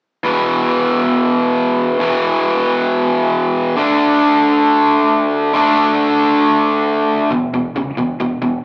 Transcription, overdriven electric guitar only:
0.24 E2 B2 E3
1.99 E2 B2 E3
3.76 D3 A3 D4
5.53 D3 A3 D4
7.31 E2 B2
7.54 E2 B2
7.76 E2 C#3
7.97 E2 B2
8.20 E2 B2
8.42 E2 B2

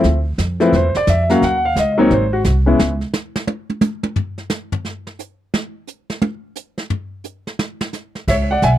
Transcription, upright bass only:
0.04 D2
0.38 F2
0.73 E2
0.95 muted upright bass stroke
1.07 F2
1.42 D#2
1.76 C#2
2.11 G#1
2.45 C2
2.79 C#2
8.28 C#2
8.62 B1

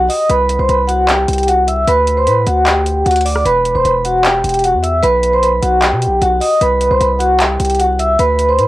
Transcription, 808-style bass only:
0.30 C2
0.59 C2
0.69 C2
1.28 C2
1.87 D2
2.27 A2
2.47 D2
3.06 D2
3.45 E1
3.75 E1
3.85 E1
4.44 E1
4.74 E2
5.03 B1
5.63 B1
5.92 B2
6.07 B1
6.22 B1
6.61 C2
6.91 C2
7.01 C2
7.60 C2
8.19 D2
8.59 A2

